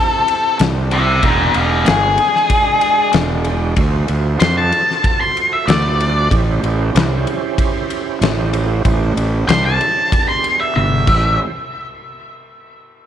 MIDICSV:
0, 0, Header, 1, 5, 480
1, 0, Start_track
1, 0, Tempo, 635593
1, 930, Time_signature, 4, 2, 24, 8
1, 9867, End_track
2, 0, Start_track
2, 0, Title_t, "Lead electric guitar"
2, 0, Program_c, 0, 29
2, 0, Note_on_c, 0, 69, 107
2, 433, Note_off_c, 0, 69, 0
2, 702, Note_on_c, 0, 72, 84
2, 706, Note_on_c, 0, 76, 100
2, 931, Note_off_c, 0, 76, 0
2, 936, Note_off_c, 0, 72, 0
2, 942, Note_on_c, 0, 68, 76
2, 948, Note_on_c, 0, 72, 72
2, 1161, Note_off_c, 0, 68, 0
2, 1171, Note_off_c, 0, 72, 0
2, 1174, Note_on_c, 0, 64, 69
2, 1179, Note_on_c, 0, 67, 83
2, 1396, Note_off_c, 0, 64, 0
2, 1407, Note_off_c, 0, 67, 0
2, 1415, Note_on_c, 0, 68, 98
2, 2343, Note_off_c, 0, 68, 0
2, 3321, Note_on_c, 0, 84, 111
2, 3441, Note_off_c, 0, 84, 0
2, 3455, Note_on_c, 0, 81, 102
2, 3918, Note_off_c, 0, 81, 0
2, 3932, Note_on_c, 0, 84, 99
2, 4163, Note_off_c, 0, 84, 0
2, 4175, Note_on_c, 0, 76, 89
2, 4285, Note_on_c, 0, 74, 100
2, 4288, Note_off_c, 0, 76, 0
2, 4752, Note_off_c, 0, 74, 0
2, 7163, Note_on_c, 0, 84, 109
2, 7281, Note_off_c, 0, 84, 0
2, 7291, Note_on_c, 0, 81, 98
2, 7754, Note_off_c, 0, 81, 0
2, 7768, Note_on_c, 0, 84, 85
2, 8000, Note_off_c, 0, 84, 0
2, 8008, Note_on_c, 0, 76, 99
2, 8120, Note_off_c, 0, 76, 0
2, 8129, Note_on_c, 0, 76, 106
2, 8594, Note_off_c, 0, 76, 0
2, 9867, End_track
3, 0, Start_track
3, 0, Title_t, "Tonewheel organ"
3, 0, Program_c, 1, 16
3, 0, Note_on_c, 1, 60, 71
3, 0, Note_on_c, 1, 64, 67
3, 0, Note_on_c, 1, 67, 63
3, 0, Note_on_c, 1, 72, 64
3, 909, Note_off_c, 1, 60, 0
3, 909, Note_off_c, 1, 64, 0
3, 909, Note_off_c, 1, 67, 0
3, 911, Note_off_c, 1, 72, 0
3, 932, Note_on_c, 1, 74, 68
3, 932, Note_on_c, 1, 79, 71
3, 933, Note_on_c, 1, 62, 65
3, 937, Note_on_c, 1, 56, 63
3, 2831, Note_off_c, 1, 62, 0
3, 2831, Note_off_c, 1, 74, 0
3, 2831, Note_off_c, 1, 79, 0
3, 2834, Note_off_c, 1, 56, 0
3, 2849, Note_on_c, 1, 65, 64
3, 2855, Note_on_c, 1, 66, 66
3, 2855, Note_on_c, 1, 72, 69
3, 2856, Note_on_c, 1, 69, 67
3, 4748, Note_off_c, 1, 65, 0
3, 4751, Note_off_c, 1, 66, 0
3, 4752, Note_off_c, 1, 69, 0
3, 4752, Note_off_c, 1, 72, 0
3, 4762, Note_on_c, 1, 61, 73
3, 4762, Note_on_c, 1, 64, 70
3, 4764, Note_on_c, 1, 67, 76
3, 4768, Note_on_c, 1, 72, 69
3, 6664, Note_off_c, 1, 61, 0
3, 6664, Note_off_c, 1, 64, 0
3, 6665, Note_off_c, 1, 67, 0
3, 6668, Note_off_c, 1, 72, 0
3, 6680, Note_on_c, 1, 72, 75
3, 6681, Note_on_c, 1, 64, 72
3, 6681, Note_on_c, 1, 67, 72
3, 6683, Note_on_c, 1, 61, 78
3, 7634, Note_off_c, 1, 64, 0
3, 7634, Note_off_c, 1, 67, 0
3, 7634, Note_off_c, 1, 72, 0
3, 7635, Note_off_c, 1, 61, 0
3, 7638, Note_on_c, 1, 62, 76
3, 7638, Note_on_c, 1, 68, 72
3, 7642, Note_on_c, 1, 59, 77
3, 7643, Note_on_c, 1, 67, 79
3, 8350, Note_off_c, 1, 67, 0
3, 8355, Note_off_c, 1, 68, 0
3, 8356, Note_off_c, 1, 62, 0
3, 8358, Note_off_c, 1, 59, 0
3, 8359, Note_on_c, 1, 67, 68
3, 8360, Note_on_c, 1, 61, 69
3, 8360, Note_on_c, 1, 64, 69
3, 8361, Note_on_c, 1, 72, 71
3, 8696, Note_off_c, 1, 61, 0
3, 8696, Note_off_c, 1, 67, 0
3, 8697, Note_off_c, 1, 64, 0
3, 8697, Note_off_c, 1, 72, 0
3, 9867, End_track
4, 0, Start_track
4, 0, Title_t, "Fingered electric bass"
4, 0, Program_c, 2, 33
4, 453, Note_on_c, 2, 36, 87
4, 901, Note_off_c, 2, 36, 0
4, 930, Note_on_c, 2, 28, 85
4, 1153, Note_off_c, 2, 28, 0
4, 1172, Note_on_c, 2, 28, 80
4, 1394, Note_off_c, 2, 28, 0
4, 1420, Note_on_c, 2, 31, 95
4, 1638, Note_off_c, 2, 31, 0
4, 2370, Note_on_c, 2, 28, 89
4, 2819, Note_off_c, 2, 28, 0
4, 2848, Note_on_c, 2, 38, 89
4, 3072, Note_off_c, 2, 38, 0
4, 3091, Note_on_c, 2, 38, 85
4, 3313, Note_off_c, 2, 38, 0
4, 3331, Note_on_c, 2, 41, 94
4, 3553, Note_off_c, 2, 41, 0
4, 4286, Note_on_c, 2, 38, 98
4, 4737, Note_off_c, 2, 38, 0
4, 4768, Note_on_c, 2, 33, 96
4, 4991, Note_off_c, 2, 33, 0
4, 5008, Note_on_c, 2, 33, 82
4, 5231, Note_off_c, 2, 33, 0
4, 5247, Note_on_c, 2, 36, 93
4, 5470, Note_off_c, 2, 36, 0
4, 6201, Note_on_c, 2, 33, 94
4, 6654, Note_off_c, 2, 33, 0
4, 6683, Note_on_c, 2, 33, 93
4, 6908, Note_off_c, 2, 33, 0
4, 6920, Note_on_c, 2, 33, 81
4, 7146, Note_off_c, 2, 33, 0
4, 7160, Note_on_c, 2, 36, 97
4, 7386, Note_off_c, 2, 36, 0
4, 8125, Note_on_c, 2, 31, 91
4, 8349, Note_off_c, 2, 31, 0
4, 8364, Note_on_c, 2, 33, 94
4, 8589, Note_off_c, 2, 33, 0
4, 9867, End_track
5, 0, Start_track
5, 0, Title_t, "Drums"
5, 212, Note_on_c, 9, 51, 68
5, 288, Note_off_c, 9, 51, 0
5, 448, Note_on_c, 9, 51, 91
5, 461, Note_on_c, 9, 38, 109
5, 524, Note_off_c, 9, 51, 0
5, 537, Note_off_c, 9, 38, 0
5, 689, Note_on_c, 9, 51, 72
5, 765, Note_off_c, 9, 51, 0
5, 927, Note_on_c, 9, 51, 81
5, 929, Note_on_c, 9, 36, 97
5, 1002, Note_off_c, 9, 51, 0
5, 1005, Note_off_c, 9, 36, 0
5, 1165, Note_on_c, 9, 51, 73
5, 1241, Note_off_c, 9, 51, 0
5, 1405, Note_on_c, 9, 51, 101
5, 1418, Note_on_c, 9, 38, 118
5, 1481, Note_off_c, 9, 51, 0
5, 1494, Note_off_c, 9, 38, 0
5, 1644, Note_on_c, 9, 51, 69
5, 1719, Note_off_c, 9, 51, 0
5, 1779, Note_on_c, 9, 38, 35
5, 1854, Note_off_c, 9, 38, 0
5, 1886, Note_on_c, 9, 51, 103
5, 1887, Note_on_c, 9, 36, 98
5, 1961, Note_off_c, 9, 51, 0
5, 1962, Note_off_c, 9, 36, 0
5, 2123, Note_on_c, 9, 51, 70
5, 2199, Note_off_c, 9, 51, 0
5, 2362, Note_on_c, 9, 51, 94
5, 2374, Note_on_c, 9, 38, 109
5, 2437, Note_off_c, 9, 51, 0
5, 2450, Note_off_c, 9, 38, 0
5, 2602, Note_on_c, 9, 51, 71
5, 2677, Note_off_c, 9, 51, 0
5, 2843, Note_on_c, 9, 51, 88
5, 2845, Note_on_c, 9, 36, 101
5, 2918, Note_off_c, 9, 51, 0
5, 2921, Note_off_c, 9, 36, 0
5, 3083, Note_on_c, 9, 51, 63
5, 3158, Note_off_c, 9, 51, 0
5, 3324, Note_on_c, 9, 51, 84
5, 3337, Note_on_c, 9, 38, 114
5, 3400, Note_off_c, 9, 51, 0
5, 3413, Note_off_c, 9, 38, 0
5, 3567, Note_on_c, 9, 51, 66
5, 3643, Note_off_c, 9, 51, 0
5, 3705, Note_on_c, 9, 38, 30
5, 3780, Note_off_c, 9, 38, 0
5, 3808, Note_on_c, 9, 36, 101
5, 3809, Note_on_c, 9, 51, 84
5, 3883, Note_off_c, 9, 36, 0
5, 3885, Note_off_c, 9, 51, 0
5, 4054, Note_on_c, 9, 51, 61
5, 4130, Note_off_c, 9, 51, 0
5, 4292, Note_on_c, 9, 51, 92
5, 4305, Note_on_c, 9, 38, 117
5, 4367, Note_off_c, 9, 51, 0
5, 4380, Note_off_c, 9, 38, 0
5, 4534, Note_on_c, 9, 51, 72
5, 4610, Note_off_c, 9, 51, 0
5, 4768, Note_on_c, 9, 36, 100
5, 4773, Note_on_c, 9, 51, 88
5, 4843, Note_off_c, 9, 36, 0
5, 4848, Note_off_c, 9, 51, 0
5, 5012, Note_on_c, 9, 51, 62
5, 5087, Note_off_c, 9, 51, 0
5, 5254, Note_on_c, 9, 51, 98
5, 5267, Note_on_c, 9, 38, 114
5, 5330, Note_off_c, 9, 51, 0
5, 5343, Note_off_c, 9, 38, 0
5, 5491, Note_on_c, 9, 51, 68
5, 5566, Note_off_c, 9, 51, 0
5, 5726, Note_on_c, 9, 36, 100
5, 5727, Note_on_c, 9, 51, 99
5, 5801, Note_off_c, 9, 36, 0
5, 5803, Note_off_c, 9, 51, 0
5, 5968, Note_on_c, 9, 51, 75
5, 6044, Note_off_c, 9, 51, 0
5, 6206, Note_on_c, 9, 51, 91
5, 6219, Note_on_c, 9, 38, 115
5, 6282, Note_off_c, 9, 51, 0
5, 6295, Note_off_c, 9, 38, 0
5, 6445, Note_on_c, 9, 51, 77
5, 6520, Note_off_c, 9, 51, 0
5, 6684, Note_on_c, 9, 36, 103
5, 6684, Note_on_c, 9, 51, 90
5, 6759, Note_off_c, 9, 36, 0
5, 6759, Note_off_c, 9, 51, 0
5, 6927, Note_on_c, 9, 51, 72
5, 7003, Note_off_c, 9, 51, 0
5, 7165, Note_on_c, 9, 51, 104
5, 7177, Note_on_c, 9, 38, 118
5, 7240, Note_off_c, 9, 51, 0
5, 7253, Note_off_c, 9, 38, 0
5, 7406, Note_on_c, 9, 51, 64
5, 7482, Note_off_c, 9, 51, 0
5, 7645, Note_on_c, 9, 36, 110
5, 7650, Note_on_c, 9, 51, 94
5, 7720, Note_off_c, 9, 36, 0
5, 7725, Note_off_c, 9, 51, 0
5, 7884, Note_on_c, 9, 51, 67
5, 7960, Note_off_c, 9, 51, 0
5, 8125, Note_on_c, 9, 48, 60
5, 8201, Note_off_c, 9, 48, 0
5, 8362, Note_on_c, 9, 49, 92
5, 8363, Note_on_c, 9, 36, 106
5, 8438, Note_off_c, 9, 49, 0
5, 8439, Note_off_c, 9, 36, 0
5, 9867, End_track
0, 0, End_of_file